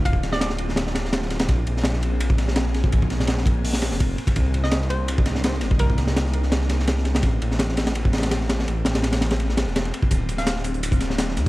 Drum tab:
RD |x---x---x---x---x---x---x---x-x-|x---x---x---x---x---x---x---x---|x---x---x---x-------x---x---x-x-|x---x---x---x---x---x---x---x---|
HH |--------------------------------|--------------------------------|----------------o---------------|--------------------------------|
SD |----o-o-o-o---o-o-o-o-o-o-o-o-o-|------o-o-o---------o-o-o-o-o---|----o-o-o-o-------o-o-o---------|------o-o-o---------o-o-o-o-o---|
BD |o-o-----------------------------|o-----------------o-----------o-|o-o---------o-----------o-----o-|o-----------------o-----------o-|

RD |x---x---x---x---x---x---x---x-x-|x---x---x---x-x-x---xxx-x---x---|x---x-x-x-x-x-x-x---x---x-x-x---|x---x---x---x---x---x---x---x---|
HH |--------------------------------|--------------------------------|--------------------------------|x---x-x-x---x-x-x-x-x---x---x---|
SD |----o-o-o-o---o-o-o-o-o-o-o-o-o-|------o-o-o-o-o-----ooo-o-o-o-o-|----o-o-o-o-o-o---o-o-o-o-------|------o-o-o---------o-o-o-o-o---|
BD |o-o-----------------------------|o-----------------o-------------|------------------------------o-|o-----------------o-------------|